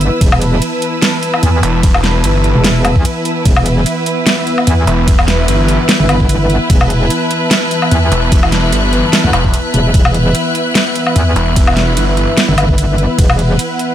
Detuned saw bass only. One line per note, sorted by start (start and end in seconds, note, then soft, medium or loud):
1.63 2.22 E1 loud
2.24 2.53 G1 medium
4.87 5.47 E1 loud
5.48 5.78 G1 loud
8.12 8.71 E1 loud
8.73 9.02 G1 loud
9.33 9.52 E1 loud
11.36 11.95 E1 loud
11.97 12.26 G1 medium